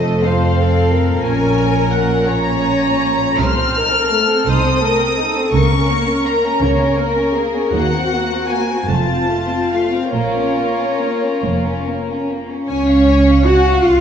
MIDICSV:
0, 0, Header, 1, 6, 480
1, 0, Start_track
1, 0, Key_signature, -5, "minor"
1, 0, Tempo, 676437
1, 888, Time_signature, 6, 3, 24, 8
1, 1362, Tempo, 711744
1, 1842, Tempo, 773196
1, 2322, Tempo, 719424
1, 5202, Tempo, 781250
1, 6162, Tempo, 852273
1, 8082, Tempo, 766284
1, 8904, End_track
2, 0, Start_track
2, 0, Title_t, "Violin section"
2, 0, Program_c, 0, 48
2, 0, Note_on_c, 0, 75, 56
2, 164, Note_off_c, 0, 75, 0
2, 165, Note_on_c, 0, 77, 52
2, 882, Note_on_c, 0, 80, 73
2, 888, Note_off_c, 0, 77, 0
2, 1347, Note_on_c, 0, 78, 58
2, 1349, Note_off_c, 0, 80, 0
2, 1586, Note_off_c, 0, 78, 0
2, 1596, Note_on_c, 0, 82, 72
2, 2315, Note_on_c, 0, 89, 88
2, 2323, Note_off_c, 0, 82, 0
2, 3028, Note_off_c, 0, 89, 0
2, 3042, Note_on_c, 0, 87, 75
2, 3745, Note_on_c, 0, 85, 78
2, 3756, Note_off_c, 0, 87, 0
2, 4214, Note_off_c, 0, 85, 0
2, 4230, Note_on_c, 0, 82, 63
2, 4467, Note_off_c, 0, 82, 0
2, 5202, Note_on_c, 0, 78, 75
2, 5653, Note_off_c, 0, 78, 0
2, 5674, Note_on_c, 0, 80, 68
2, 5915, Note_off_c, 0, 80, 0
2, 5915, Note_on_c, 0, 81, 62
2, 6396, Note_off_c, 0, 81, 0
2, 6404, Note_on_c, 0, 77, 58
2, 6636, Note_on_c, 0, 70, 60
2, 6643, Note_off_c, 0, 77, 0
2, 7829, Note_off_c, 0, 70, 0
2, 8079, Note_on_c, 0, 80, 50
2, 8193, Note_off_c, 0, 80, 0
2, 8203, Note_on_c, 0, 77, 45
2, 8322, Note_on_c, 0, 80, 46
2, 8325, Note_off_c, 0, 77, 0
2, 8444, Note_off_c, 0, 80, 0
2, 8452, Note_on_c, 0, 77, 45
2, 8569, Note_off_c, 0, 77, 0
2, 8575, Note_on_c, 0, 80, 42
2, 8681, Note_off_c, 0, 80, 0
2, 8684, Note_on_c, 0, 77, 46
2, 8803, Note_off_c, 0, 77, 0
2, 8811, Note_on_c, 0, 78, 44
2, 8904, Note_off_c, 0, 78, 0
2, 8904, End_track
3, 0, Start_track
3, 0, Title_t, "Viola section"
3, 0, Program_c, 1, 48
3, 0, Note_on_c, 1, 69, 53
3, 148, Note_off_c, 1, 69, 0
3, 161, Note_on_c, 1, 72, 52
3, 407, Note_off_c, 1, 72, 0
3, 414, Note_on_c, 1, 69, 47
3, 653, Note_off_c, 1, 69, 0
3, 653, Note_on_c, 1, 70, 59
3, 1590, Note_on_c, 1, 73, 60
3, 1595, Note_off_c, 1, 70, 0
3, 2320, Note_off_c, 1, 73, 0
3, 2322, Note_on_c, 1, 72, 55
3, 2558, Note_off_c, 1, 72, 0
3, 2560, Note_on_c, 1, 70, 55
3, 2795, Note_on_c, 1, 69, 55
3, 2796, Note_off_c, 1, 70, 0
3, 3021, Note_on_c, 1, 72, 59
3, 3030, Note_off_c, 1, 69, 0
3, 3256, Note_on_c, 1, 70, 57
3, 3263, Note_off_c, 1, 72, 0
3, 3494, Note_on_c, 1, 69, 53
3, 3498, Note_off_c, 1, 70, 0
3, 3743, Note_off_c, 1, 69, 0
3, 3743, Note_on_c, 1, 70, 59
3, 4458, Note_on_c, 1, 73, 56
3, 4462, Note_off_c, 1, 70, 0
3, 4696, Note_on_c, 1, 70, 57
3, 4703, Note_off_c, 1, 73, 0
3, 4941, Note_on_c, 1, 68, 50
3, 4946, Note_off_c, 1, 70, 0
3, 5193, Note_off_c, 1, 68, 0
3, 5195, Note_on_c, 1, 66, 58
3, 5914, Note_off_c, 1, 66, 0
3, 5918, Note_on_c, 1, 65, 49
3, 6638, Note_on_c, 1, 73, 48
3, 6640, Note_off_c, 1, 65, 0
3, 7711, Note_off_c, 1, 73, 0
3, 8078, Note_on_c, 1, 61, 64
3, 8538, Note_off_c, 1, 61, 0
3, 8557, Note_on_c, 1, 66, 66
3, 8799, Note_off_c, 1, 66, 0
3, 8799, Note_on_c, 1, 65, 60
3, 8904, Note_off_c, 1, 65, 0
3, 8904, End_track
4, 0, Start_track
4, 0, Title_t, "Violin section"
4, 0, Program_c, 2, 48
4, 0, Note_on_c, 2, 57, 42
4, 0, Note_on_c, 2, 69, 45
4, 149, Note_off_c, 2, 69, 0
4, 153, Note_on_c, 2, 60, 47
4, 154, Note_off_c, 2, 57, 0
4, 157, Note_on_c, 2, 69, 41
4, 870, Note_off_c, 2, 69, 0
4, 883, Note_off_c, 2, 60, 0
4, 884, Note_on_c, 2, 61, 46
4, 884, Note_on_c, 2, 70, 49
4, 1591, Note_off_c, 2, 61, 0
4, 1591, Note_off_c, 2, 70, 0
4, 1591, Note_on_c, 2, 73, 47
4, 1599, Note_on_c, 2, 61, 49
4, 2310, Note_off_c, 2, 61, 0
4, 2318, Note_on_c, 2, 69, 52
4, 2319, Note_on_c, 2, 57, 47
4, 2321, Note_off_c, 2, 73, 0
4, 2433, Note_off_c, 2, 57, 0
4, 2434, Note_on_c, 2, 60, 44
4, 2554, Note_on_c, 2, 63, 45
4, 2558, Note_off_c, 2, 60, 0
4, 2665, Note_on_c, 2, 60, 46
4, 2676, Note_off_c, 2, 63, 0
4, 2785, Note_on_c, 2, 57, 44
4, 2790, Note_off_c, 2, 60, 0
4, 2898, Note_on_c, 2, 60, 44
4, 2908, Note_off_c, 2, 57, 0
4, 3018, Note_on_c, 2, 63, 47
4, 3023, Note_off_c, 2, 60, 0
4, 3130, Note_on_c, 2, 60, 48
4, 3143, Note_off_c, 2, 63, 0
4, 3255, Note_on_c, 2, 57, 48
4, 3259, Note_off_c, 2, 60, 0
4, 3375, Note_on_c, 2, 60, 47
4, 3382, Note_off_c, 2, 57, 0
4, 3499, Note_on_c, 2, 63, 53
4, 3503, Note_off_c, 2, 60, 0
4, 3625, Note_off_c, 2, 63, 0
4, 3625, Note_on_c, 2, 60, 48
4, 3722, Note_off_c, 2, 69, 0
4, 3739, Note_on_c, 2, 58, 47
4, 3739, Note_on_c, 2, 70, 52
4, 3747, Note_off_c, 2, 60, 0
4, 3855, Note_off_c, 2, 58, 0
4, 3863, Note_on_c, 2, 61, 44
4, 3985, Note_off_c, 2, 61, 0
4, 3985, Note_on_c, 2, 58, 47
4, 4098, Note_on_c, 2, 61, 44
4, 4105, Note_off_c, 2, 58, 0
4, 4222, Note_off_c, 2, 61, 0
4, 4227, Note_on_c, 2, 58, 49
4, 4346, Note_off_c, 2, 58, 0
4, 4351, Note_on_c, 2, 61, 46
4, 4465, Note_on_c, 2, 58, 48
4, 4468, Note_off_c, 2, 61, 0
4, 4570, Note_on_c, 2, 61, 49
4, 4585, Note_off_c, 2, 58, 0
4, 4699, Note_off_c, 2, 61, 0
4, 4699, Note_on_c, 2, 58, 48
4, 4823, Note_on_c, 2, 61, 44
4, 4824, Note_off_c, 2, 58, 0
4, 4942, Note_on_c, 2, 58, 51
4, 4949, Note_off_c, 2, 61, 0
4, 5072, Note_off_c, 2, 58, 0
4, 5083, Note_on_c, 2, 61, 46
4, 5206, Note_off_c, 2, 61, 0
4, 5213, Note_on_c, 2, 58, 49
4, 5318, Note_off_c, 2, 58, 0
4, 5322, Note_on_c, 2, 60, 45
4, 5440, Note_off_c, 2, 60, 0
4, 5447, Note_on_c, 2, 58, 42
4, 5563, Note_off_c, 2, 58, 0
4, 5567, Note_on_c, 2, 60, 41
4, 5682, Note_off_c, 2, 60, 0
4, 5685, Note_on_c, 2, 58, 44
4, 5801, Note_off_c, 2, 58, 0
4, 5810, Note_on_c, 2, 60, 40
4, 5912, Note_off_c, 2, 70, 0
4, 5918, Note_on_c, 2, 57, 39
4, 5919, Note_on_c, 2, 65, 47
4, 5924, Note_off_c, 2, 60, 0
4, 6028, Note_on_c, 2, 60, 40
4, 6031, Note_off_c, 2, 57, 0
4, 6151, Note_on_c, 2, 57, 40
4, 6158, Note_off_c, 2, 60, 0
4, 6263, Note_on_c, 2, 60, 39
4, 6274, Note_off_c, 2, 57, 0
4, 6389, Note_off_c, 2, 60, 0
4, 6400, Note_on_c, 2, 57, 45
4, 6514, Note_on_c, 2, 60, 40
4, 6519, Note_off_c, 2, 57, 0
4, 6637, Note_off_c, 2, 60, 0
4, 6642, Note_on_c, 2, 58, 44
4, 6755, Note_off_c, 2, 58, 0
4, 6773, Note_on_c, 2, 61, 37
4, 6890, Note_off_c, 2, 61, 0
4, 6891, Note_on_c, 2, 58, 36
4, 7010, Note_off_c, 2, 58, 0
4, 7011, Note_on_c, 2, 61, 38
4, 7132, Note_off_c, 2, 61, 0
4, 7132, Note_on_c, 2, 58, 39
4, 7254, Note_off_c, 2, 58, 0
4, 7260, Note_on_c, 2, 61, 37
4, 7377, Note_on_c, 2, 58, 41
4, 7378, Note_off_c, 2, 61, 0
4, 7496, Note_off_c, 2, 58, 0
4, 7502, Note_on_c, 2, 61, 38
4, 7617, Note_off_c, 2, 61, 0
4, 7618, Note_on_c, 2, 58, 39
4, 7735, Note_off_c, 2, 58, 0
4, 7750, Note_on_c, 2, 61, 36
4, 7861, Note_off_c, 2, 61, 0
4, 7864, Note_on_c, 2, 58, 41
4, 7962, Note_off_c, 2, 65, 0
4, 7976, Note_off_c, 2, 58, 0
4, 7977, Note_on_c, 2, 61, 39
4, 8083, Note_on_c, 2, 73, 64
4, 8086, Note_off_c, 2, 61, 0
4, 8541, Note_off_c, 2, 73, 0
4, 8563, Note_on_c, 2, 78, 62
4, 8802, Note_off_c, 2, 78, 0
4, 8803, Note_on_c, 2, 77, 60
4, 8904, Note_off_c, 2, 77, 0
4, 8904, End_track
5, 0, Start_track
5, 0, Title_t, "Cello section"
5, 0, Program_c, 3, 48
5, 0, Note_on_c, 3, 41, 49
5, 884, Note_on_c, 3, 46, 53
5, 886, Note_off_c, 3, 41, 0
5, 2295, Note_off_c, 3, 46, 0
5, 2312, Note_on_c, 3, 48, 62
5, 2895, Note_off_c, 3, 48, 0
5, 3030, Note_on_c, 3, 48, 55
5, 3615, Note_off_c, 3, 48, 0
5, 3742, Note_on_c, 3, 49, 61
5, 4327, Note_off_c, 3, 49, 0
5, 4454, Note_on_c, 3, 49, 55
5, 5057, Note_off_c, 3, 49, 0
5, 5195, Note_on_c, 3, 39, 63
5, 5781, Note_off_c, 3, 39, 0
5, 5907, Note_on_c, 3, 41, 57
5, 6502, Note_off_c, 3, 41, 0
5, 6636, Note_on_c, 3, 46, 54
5, 7241, Note_off_c, 3, 46, 0
5, 7369, Note_on_c, 3, 41, 46
5, 7957, Note_off_c, 3, 41, 0
5, 8077, Note_on_c, 3, 61, 75
5, 8538, Note_off_c, 3, 61, 0
5, 8554, Note_on_c, 3, 66, 75
5, 8794, Note_on_c, 3, 65, 66
5, 8797, Note_off_c, 3, 66, 0
5, 8904, Note_off_c, 3, 65, 0
5, 8904, End_track
6, 0, Start_track
6, 0, Title_t, "Double bass section"
6, 0, Program_c, 4, 48
6, 0, Note_on_c, 4, 29, 43
6, 885, Note_on_c, 4, 34, 50
6, 889, Note_off_c, 4, 29, 0
6, 2295, Note_off_c, 4, 34, 0
6, 2312, Note_on_c, 4, 36, 62
6, 2894, Note_off_c, 4, 36, 0
6, 3031, Note_on_c, 4, 36, 61
6, 3615, Note_off_c, 4, 36, 0
6, 3736, Note_on_c, 4, 37, 62
6, 4324, Note_off_c, 4, 37, 0
6, 4456, Note_on_c, 4, 37, 58
6, 5057, Note_off_c, 4, 37, 0
6, 5195, Note_on_c, 4, 39, 63
6, 5781, Note_off_c, 4, 39, 0
6, 5914, Note_on_c, 4, 29, 55
6, 6506, Note_off_c, 4, 29, 0
6, 6634, Note_on_c, 4, 34, 47
6, 7240, Note_off_c, 4, 34, 0
6, 7370, Note_on_c, 4, 29, 49
6, 7957, Note_off_c, 4, 29, 0
6, 8078, Note_on_c, 4, 37, 53
6, 8776, Note_off_c, 4, 37, 0
6, 8799, Note_on_c, 4, 36, 53
6, 8904, Note_off_c, 4, 36, 0
6, 8904, End_track
0, 0, End_of_file